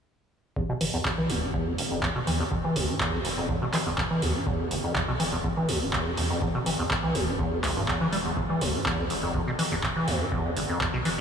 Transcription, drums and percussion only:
0.56 kick loud
0.81 open hi-hat loud
1.05 kick loud
1.05 clap loud
1.30 open hi-hat medium
1.54 kick loud
1.78 open hi-hat loud
2.03 kick loud
2.03 clap loud
2.27 open hi-hat medium
2.52 kick loud
2.76 open hi-hat loud
3.00 kick loud
3.00 clap loud
3.25 open hi-hat medium
3.49 kick loud
3.73 clap medium
3.73 open hi-hat loud
3.98 kick loud
3.98 clap loud
4.22 open hi-hat medium
4.47 kick loud
4.71 open hi-hat loud
4.95 kick loud
4.95 clap loud
5.20 open hi-hat medium
5.44 kick loud
5.69 open hi-hat loud
5.93 kick loud
5.93 clap loud
6.17 open hi-hat medium
6.42 kick loud
6.66 open hi-hat loud
6.91 kick loud
6.91 clap loud
7.15 open hi-hat medium
7.39 kick loud
7.64 clap medium
7.64 open hi-hat loud
7.88 kick loud
7.88 clap loud
8.13 open hi-hat medium
8.37 kick loud
8.61 open hi-hat loud
8.86 kick loud
8.86 clap loud
9.10 open hi-hat medium
9.35 kick loud
9.59 open hi-hat medium
9.83 kick loud
9.83 clap loud
10.08 open hi-hat medium
10.32 kick loud
10.57 open hi-hat medium
10.81 kick loud
10.81 clap loud
11.05 open hi-hat medium

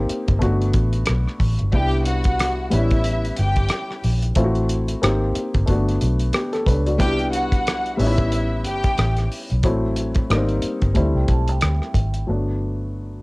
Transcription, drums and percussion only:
0.09 closed hi-hat medium
0.28 kick medium
0.28 closed hi-hat medium
0.42 kick medium
0.42 closed hi-hat medium
0.62 closed hi-hat soft
0.73 kick medium
0.73 closed hi-hat medium
0.93 closed hi-hat soft
1.06 cross-stick loud
1.06 closed hi-hat medium
1.27 cross-stick soft
1.40 kick medium
1.40 open hi-hat medium
1.59 closed hi-hat soft
1.72 kick loud
1.72 closed hi-hat medium
1.91 closed hi-hat soft
2.05 closed hi-hat medium
2.24 kick medium
2.24 closed hi-hat medium
2.39 cross-stick loud
2.39 closed hi-hat loud
2.71 closed hi-hat medium
2.90 kick medium
2.90 closed hi-hat soft
3.04 closed hi-hat medium
3.25 closed hi-hat soft
3.36 closed hi-hat medium
3.56 kick medium
3.56 closed hi-hat soft
3.69 cross-stick loud
3.69 closed hi-hat medium
3.91 cross-stick soft
4.04 open hi-hat medium
4.22 closed hi-hat soft
4.35 kick loud
4.35 closed hi-hat medium
4.55 closed hi-hat soft
4.69 closed hi-hat medium
4.88 closed hi-hat medium
5.03 cross-stick loud
5.03 closed hi-hat loud
5.35 closed hi-hat medium
5.54 kick medium
5.54 closed hi-hat soft
5.67 kick medium
5.67 closed hi-hat medium
5.88 closed hi-hat soft
6.01 closed hi-hat medium
6.20 closed hi-hat soft
6.33 cross-stick medium
6.33 closed hi-hat medium
6.53 cross-stick soft
6.53 closed hi-hat soft
6.67 kick medium
6.67 closed hi-hat medium
6.87 closed hi-hat soft
7.00 kick loud
7.00 closed hi-hat loud
7.19 closed hi-hat soft
7.33 closed hi-hat medium
7.52 kick medium
7.52 closed hi-hat medium
7.67 cross-stick loud
7.67 closed hi-hat medium
7.86 closed hi-hat soft
7.99 open hi-hat medium
8.18 kick medium
8.18 closed hi-hat soft
8.32 closed hi-hat medium
8.64 closed hi-hat medium
8.84 kick medium
8.84 closed hi-hat medium
8.98 cross-stick loud
8.98 closed hi-hat medium
9.16 cross-stick soft
9.16 closed hi-hat soft
9.31 open hi-hat medium
9.50 closed hi-hat soft
9.63 kick loud
9.63 closed hi-hat medium
9.96 closed hi-hat medium
10.15 kick loud
10.15 closed hi-hat soft
10.30 cross-stick loud
10.30 closed hi-hat medium
10.49 closed hi-hat soft
10.62 closed hi-hat medium
10.82 kick medium
10.82 closed hi-hat soft
10.95 kick medium
10.95 closed hi-hat medium
11.28 kick medium
11.28 closed hi-hat medium
11.48 closed hi-hat soft
11.61 cross-stick loud
11.61 closed hi-hat medium
11.82 cross-stick soft
11.95 kick medium
11.95 closed hi-hat medium
12.14 closed hi-hat soft

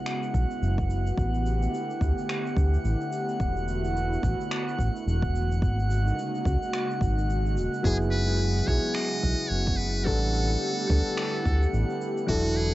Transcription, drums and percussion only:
0.06 finger snap medium
0.06 shaker soft
0.23 shaker soft
0.34 kick medium
0.34 shaker medium
0.51 shaker soft
0.63 shaker soft
0.78 kick medium
0.78 shaker soft
0.90 shaker medium
1.07 shaker soft
1.18 kick loud
1.18 shaker soft
1.34 shaker soft
1.46 shaker medium
1.62 shaker soft
1.74 shaker soft
1.90 shaker soft
2.01 kick loud
2.01 shaker medium
2.18 shaker soft
2.29 finger snap medium
2.29 shaker soft
2.47 shaker soft
2.57 kick loud
2.57 shaker medium
2.74 shaker soft
2.85 shaker soft
3.01 shaker soft
3.13 shaker medium
3.29 shaker soft
3.40 kick loud
3.40 shaker soft
3.57 shaker soft
3.68 shaker medium
3.85 shaker soft
3.97 shaker soft
4.13 shaker soft
4.23 kick loud
4.23 shaker medium
4.41 shaker soft
4.51 finger snap medium
4.51 shaker soft
4.69 shaker soft
4.79 kick medium
4.79 shaker medium
4.96 shaker soft
5.08 shaker soft
5.23 kick medium
5.23 shaker soft
5.36 shaker medium
5.52 shaker soft
5.62 kick loud
5.62 shaker soft
5.79 shaker soft
5.91 shaker medium
6.08 shaker soft
6.19 shaker soft
6.35 shaker soft
6.45 kick loud
6.45 shaker medium
6.63 shaker soft
6.73 finger snap medium
6.73 shaker soft
6.91 shaker soft
7.01 kick loud
7.01 shaker medium
7.18 shaker soft
7.30 shaker soft
7.46 shaker soft
7.57 shaker medium
7.74 shaker soft
7.84 kick loud
7.84 shaker soft
8.02 shaker soft
8.13 shaker medium
8.29 shaker soft
8.40 shaker soft
8.57 shaker soft
8.68 kick loud
8.68 shaker medium
8.84 shaker soft
8.95 finger snap medium
8.95 shaker soft
9.12 shaker soft
9.23 kick medium
9.23 shaker medium
9.40 shaker soft
9.52 shaker soft
9.67 kick loud
9.67 shaker soft
9.80 shaker medium
9.96 shaker soft
10.07 kick loud
10.07 shaker soft
10.23 shaker soft
10.35 shaker medium
10.51 shaker soft
10.63 shaker soft
10.79 shaker soft
10.90 kick loud
10.90 shaker medium
11.07 shaker soft
11.17 finger snap medium
11.17 shaker soft
11.35 shaker soft
11.45 kick loud
11.45 shaker medium
11.63 shaker soft
11.74 shaker soft
11.90 shaker soft
12.02 shaker medium
12.18 shaker soft
12.29 kick loud
12.29 shaker soft
12.46 shaker soft
12.57 shaker medium

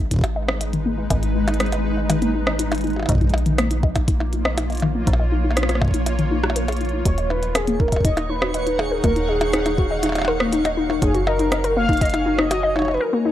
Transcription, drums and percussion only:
0.11 kick medium
0.11 closed hi-hat medium
0.14 kick medium
0.16 kick medium
0.19 kick medium
0.21 kick loud
0.21 closed hi-hat soft
0.21 percussion blips medium
0.48 cross-stick loud
0.48 percussion blips medium
0.61 closed hi-hat medium
0.73 closed hi-hat soft
1.10 kick loud
1.10 closed hi-hat medium
1.10 percussion blips soft
1.23 closed hi-hat soft
1.48 closed hi-hat soft
1.48 percussion blips medium
1.54 closed hi-hat soft
1.60 cross-stick loud
1.60 closed hi-hat medium
1.66 closed hi-hat soft
1.72 closed hi-hat medium
1.72 percussion blips soft
2.10 closed hi-hat medium
2.10 percussion blips medium
2.22 closed hi-hat soft
2.47 cross-stick loud
2.59 closed hi-hat medium
2.72 closed hi-hat soft
2.72 percussion blips medium
2.75 closed hi-hat soft
2.81 closed hi-hat soft
2.84 closed hi-hat soft
2.87 closed hi-hat soft
2.90 closed hi-hat soft
2.93 closed hi-hat soft
2.93 percussion blips soft
2.99 percussion blips soft
3.03 percussion blips soft
3.06 kick loud
3.06 closed hi-hat medium
3.06 percussion blips soft
3.12 kick medium
3.15 kick medium
3.18 kick medium
3.21 kick soft
3.21 closed hi-hat soft
3.24 kick soft
3.27 kick soft
3.27 closed hi-hat soft
3.31 kick soft
3.31 percussion blips medium
3.38 closed hi-hat soft
3.46 closed hi-hat soft
3.58 cross-stick loud
3.58 closed hi-hat medium
3.58 percussion blips medium
3.71 closed hi-hat medium
3.83 kick loud
3.96 kick medium
3.96 closed hi-hat medium
3.96 percussion blips medium
4.08 kick loud
4.08 closed hi-hat medium
4.20 percussion blips medium
4.33 closed hi-hat soft
4.45 cross-stick loud
4.58 closed hi-hat medium
4.58 percussion blips medium
4.70 closed hi-hat soft
4.72 closed hi-hat soft
4.75 closed hi-hat soft
4.77 closed hi-hat soft
4.80 closed hi-hat soft
4.80 percussion blips medium
5.07 kick loud
5.07 closed hi-hat medium
5.13 percussion blips medium
5.51 percussion blips soft
5.57 cross-stick loud
5.57 closed hi-hat medium
5.63 cross-stick loud
5.69 cross-stick medium
5.69 closed hi-hat soft
5.75 cross-stick medium
5.82 kick loud
5.82 percussion blips medium
5.85 kick medium
5.88 kick medium
5.91 kick medium
5.91 closed hi-hat soft
6.06 closed hi-hat medium
6.06 percussion blips soft
6.19 closed hi-hat soft
6.44 cross-stick loud
6.50 percussion blips medium
6.56 closed hi-hat medium
6.68 closed hi-hat soft
6.68 percussion blips soft
6.72 closed hi-hat soft
6.77 closed hi-hat soft
6.81 closed hi-hat soft
6.85 closed hi-hat soft
6.89 closed hi-hat soft
7.05 kick loud
7.05 closed hi-hat medium
7.18 closed hi-hat soft
7.30 percussion blips soft
7.43 closed hi-hat soft
7.55 cross-stick loud
7.55 closed hi-hat medium
7.55 percussion blips medium
7.67 closed hi-hat soft
7.80 kick loud
7.80 percussion blips soft
7.88 percussion blips soft
7.92 kick medium
7.92 closed hi-hat soft
7.96 percussion blips soft
8.01 kick medium
8.05 kick loud
8.05 closed hi-hat medium
8.09 kick medium
8.17 closed hi-hat soft
8.17 percussion blips medium
8.42 cross-stick loud
8.42 percussion blips soft
8.54 closed hi-hat medium
8.67 closed hi-hat soft
8.79 percussion blips medium
9.04 kick loud
9.04 closed hi-hat medium
9.04 percussion blips soft
9.16 closed hi-hat soft
9.41 closed hi-hat soft
9.41 percussion blips medium
9.53 cross-stick loud
9.53 closed hi-hat medium
9.66 closed hi-hat soft
9.66 percussion blips soft
9.78 kick loud
10.03 closed hi-hat medium
10.03 percussion blips soft
10.06 percussion blips soft
10.09 percussion blips soft
10.12 closed hi-hat soft
10.12 percussion blips medium
10.15 percussion blips medium
10.18 percussion blips medium
10.22 percussion blips medium
10.25 percussion blips medium
10.28 percussion blips medium
10.40 cross-stick loud
10.53 closed hi-hat medium
10.65 closed hi-hat soft
10.65 percussion blips medium
10.90 percussion blips medium
11.02 kick loud
11.02 closed hi-hat medium
11.15 closed hi-hat soft
11.27 percussion blips medium
11.39 closed hi-hat soft
11.52 cross-stick loud
11.52 closed hi-hat medium
11.52 percussion blips medium
11.64 closed hi-hat soft
11.89 kick loud
11.89 closed hi-hat soft
11.93 closed hi-hat soft
11.97 closed hi-hat soft
12.01 kick loud
12.01 closed hi-hat medium
12.05 closed hi-hat soft
12.10 closed hi-hat soft
12.14 closed hi-hat soft
12.14 percussion blips medium
12.39 cross-stick loud
12.51 closed hi-hat medium
12.51 percussion blips medium
12.76 percussion blips medium
12.79 percussion blips soft
12.82 percussion blips soft
12.85 percussion blips soft
12.88 percussion blips soft
12.91 percussion blips soft
12.94 percussion blips soft
12.97 percussion blips soft

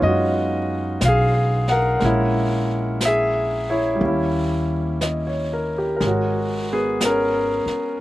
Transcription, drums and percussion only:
0.01 brush sweep soft
1.01 brush sweep soft
1.01 snare soft
1.01 hi-hat pedal soft
1.68 snare soft
2.00 brush sweep soft
2.00 snare soft
3.01 brush sweep soft
3.01 snare soft
3.01 hi-hat pedal soft
4.00 brush sweep soft
5.01 brush sweep soft
5.01 snare soft
5.01 hi-hat pedal soft
6.01 brush sweep soft
6.01 snare soft
7.00 brush sweep soft
7.00 snare soft
7.00 hi-hat pedal soft
7.67 snare soft

